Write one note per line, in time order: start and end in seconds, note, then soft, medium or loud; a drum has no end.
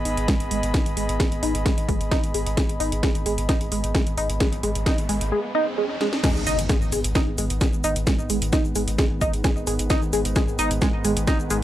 0.00 5.32 B3 medium
0.00 5.32 G#4 medium
0.00 5.32 D#5 medium
0.00 5.32 B5 medium
0.05 0.17 G#1 loud
0.05 0.16 D#4 loud
0.05 open hi-hat loud
0.17 0.28 G#1 medium
0.17 closed hi-hat soft
0.28 0.35 G#3 medium
0.28 kick loud
0.28 snare loud
0.28 closed hi-hat medium
0.40 0.50 G#1 medium
0.40 closed hi-hat medium
0.51 0.62 G#1 loud
0.51 0.58 G#3 medium
0.51 open hi-hat loud
0.63 0.74 G#1 medium
0.63 closed hi-hat medium
0.74 0.85 D#4 loud
0.74 kick loud
0.74 snare loud
0.74 closed hi-hat medium
0.86 0.96 G#1 medium
0.86 closed hi-hat soft
0.97 1.08 G#1 loud
0.97 1.04 G#3 medium
0.97 open hi-hat loud
1.09 1.20 G#1 medium
1.09 closed hi-hat medium
1.20 1.27 G#3 medium
1.20 kick loud
1.20 snare loud
1.20 closed hi-hat medium
1.32 1.42 G#1 medium
1.32 closed hi-hat medium
1.43 1.54 G#1 loud
1.43 1.53 D#4 loud
1.43 open hi-hat loud
1.55 1.65 G#1 medium
1.55 closed hi-hat soft
1.66 1.73 G#3 medium
1.66 kick loud
1.66 snare loud
1.66 closed hi-hat medium
1.78 1.88 G#1 medium
1.78 closed hi-hat medium
1.89 2.00 G#1 loud
1.89 1.96 G#3 medium
1.89 kick medium
1.89 open hi-hat loud
2.01 2.11 G#1 medium
2.01 closed hi-hat soft
2.11 2.22 D#4 loud
2.11 kick loud
2.11 snare loud
2.11 closed hi-hat medium
2.24 2.34 G#1 medium
2.24 closed hi-hat medium
2.34 2.46 G#1 loud
2.34 2.42 G#3 medium
2.34 open hi-hat loud
2.46 2.57 G#1 medium
2.46 closed hi-hat medium
2.57 2.64 G#3 medium
2.57 kick loud
2.57 snare loud
2.57 closed hi-hat medium
2.57 riser medium
2.69 2.80 G#1 medium
2.69 closed hi-hat medium
2.80 2.92 G#1 loud
2.80 2.91 D#4 loud
2.80 open hi-hat loud
2.92 3.03 G#1 medium
2.92 closed hi-hat medium
3.03 3.10 G#3 medium
3.03 kick loud
3.03 snare loud
3.03 closed hi-hat medium
3.15 3.25 G#1 medium
3.15 closed hi-hat medium
3.26 3.37 G#1 loud
3.26 3.33 G#3 medium
3.26 open hi-hat loud
3.38 3.49 G#1 medium
3.38 closed hi-hat medium
3.49 3.60 D#4 loud
3.49 kick loud
3.49 snare loud
3.49 closed hi-hat medium
3.61 3.71 G#1 medium
3.61 closed hi-hat medium
3.72 3.83 G#1 loud
3.72 3.79 G#3 medium
3.72 open hi-hat loud
3.84 3.94 G#1 medium
3.84 closed hi-hat soft
3.95 4.02 G#3 medium
3.95 kick loud
3.95 snare loud
3.95 closed hi-hat medium
4.07 4.17 G#1 medium
4.07 closed hi-hat medium
4.18 4.29 G#1 loud
4.18 4.28 D#4 loud
4.18 open hi-hat loud
4.30 4.40 G#1 medium
4.30 closed hi-hat medium
4.40 4.48 G#3 medium
4.40 kick loud
4.40 snare loud
4.40 closed hi-hat medium
4.52 4.63 G#1 medium
4.52 closed hi-hat medium
4.63 4.75 G#1 loud
4.63 4.70 G#3 medium
4.63 open hi-hat loud
4.75 4.86 G#1 medium
4.75 closed hi-hat medium
4.86 4.97 D#4 loud
4.86 kick loud
4.86 snare loud
4.86 closed hi-hat medium
4.98 5.09 G#1 medium
4.98 closed hi-hat medium
5.09 5.21 G#1 loud
5.09 5.16 G#3 medium
5.09 open hi-hat loud
5.21 5.32 G#1 medium
5.21 closed hi-hat medium
5.32 5.39 G#3 medium
5.55 5.66 D#4 loud
5.78 5.85 G#3 medium
6.01 6.08 G#3 medium
6.01 snare medium
6.13 snare medium
6.24 11.63 G#2 medium
6.24 11.63 D#3 medium
6.24 6.31 G#3 medium
6.24 11.63 B3 medium
6.24 kick loud
6.24 snare loud
6.24 closed hi-hat medium
6.24 crash loud
6.24 impact medium
6.24 shaker soft
6.36 6.46 G#1 medium
6.36 shaker soft
6.46 6.58 G#1 loud
6.46 6.57 D#4 loud
6.46 open hi-hat loud
6.46 shaker medium
6.59 6.69 G#1 medium
6.59 closed hi-hat medium
6.59 shaker soft
6.69 6.77 G#3 medium
6.69 kick loud
6.69 snare loud
6.69 closed hi-hat medium
6.69 shaker soft
6.81 6.92 G#1 medium
6.81 shaker soft
6.92 7.04 G#1 loud
6.92 6.99 G#3 medium
6.92 open hi-hat loud
6.92 shaker medium
7.04 7.15 G#1 medium
7.04 closed hi-hat medium
7.04 shaker soft
7.15 7.26 D#4 loud
7.15 kick loud
7.15 snare loud
7.15 closed hi-hat medium
7.15 shaker soft
7.27 7.38 G#1 medium
7.38 7.50 G#1 loud
7.38 7.45 G#3 medium
7.38 open hi-hat loud
7.38 shaker medium
7.50 7.61 G#1 medium
7.50 closed hi-hat medium
7.50 shaker soft
7.61 7.68 G#3 medium
7.61 kick loud
7.61 snare loud
7.61 closed hi-hat medium
7.61 shaker soft
7.73 7.83 G#1 medium
7.73 shaker soft
7.84 7.95 G#1 loud
7.84 7.95 D#4 loud
7.84 open hi-hat loud
7.84 shaker medium
7.96 8.07 G#1 medium
7.96 closed hi-hat medium
7.96 shaker soft
8.07 8.14 G#3 medium
8.07 kick loud
8.07 snare loud
8.07 closed hi-hat medium
8.07 shaker soft
8.19 8.29 G#1 medium
8.19 shaker soft
8.30 8.41 G#1 loud
8.30 8.37 G#3 medium
8.30 open hi-hat loud
8.30 shaker medium
8.42 8.52 G#1 medium
8.42 closed hi-hat medium
8.42 shaker soft
8.53 8.63 D#4 loud
8.53 kick loud
8.53 snare loud
8.53 closed hi-hat medium
8.53 shaker soft
8.65 8.75 G#1 medium
8.65 shaker soft
8.75 8.87 G#1 loud
8.75 8.83 G#3 medium
8.75 open hi-hat loud
8.75 shaker medium
8.88 8.98 G#1 medium
8.88 closed hi-hat medium
8.88 shaker soft
8.98 9.06 G#3 medium
8.98 kick loud
8.98 snare loud
8.98 closed hi-hat medium
8.98 shaker soft
9.11 9.21 G#1 medium
9.21 9.33 G#1 loud
9.21 9.32 D#4 loud
9.21 kick medium
9.21 open hi-hat loud
9.21 shaker medium
9.33 9.44 G#1 medium
9.33 closed hi-hat medium
9.33 shaker soft
9.44 9.51 G#3 medium
9.44 kick loud
9.44 snare loud
9.44 closed hi-hat medium
9.44 shaker soft
9.56 9.66 G#1 medium
9.56 shaker soft
9.67 9.79 G#1 loud
9.67 9.74 G#3 medium
9.67 open hi-hat loud
9.67 shaker medium
9.79 9.90 G#1 medium
9.79 closed hi-hat medium
9.79 shaker soft
9.90 10.01 D#4 loud
9.90 kick loud
9.90 snare loud
9.90 closed hi-hat medium
9.90 shaker soft
10.02 10.12 G#1 medium
10.02 shaker soft
10.13 10.24 G#1 loud
10.13 10.20 G#3 medium
10.13 open hi-hat loud
10.13 shaker medium
10.25 10.36 G#1 medium
10.25 closed hi-hat medium
10.25 shaker soft
10.36 10.43 G#3 medium
10.36 kick loud
10.36 snare loud
10.36 closed hi-hat medium
10.36 shaker soft
10.48 10.58 G#1 medium
10.48 shaker soft
10.59 10.70 G#1 loud
10.59 10.69 D#4 loud
10.59 open hi-hat loud
10.59 shaker medium
10.71 10.81 G#1 medium
10.71 closed hi-hat medium
10.71 shaker soft
10.82 10.89 G#3 medium
10.82 kick loud
10.82 snare loud
10.82 closed hi-hat medium
10.82 shaker soft
10.94 11.04 G#1 medium
11.04 11.16 G#1 loud
11.04 11.12 G#3 medium
11.04 open hi-hat loud
11.04 shaker medium
11.17 11.27 G#1 medium
11.17 closed hi-hat medium
11.17 shaker soft
11.27 11.38 D#4 loud
11.27 kick loud
11.27 snare loud
11.27 closed hi-hat medium
11.27 shaker soft
11.39 11.50 G#1 medium
11.39 shaker soft
11.50 11.62 G#1 medium
11.50 11.58 G#3 medium
11.50 open hi-hat loud
11.50 shaker medium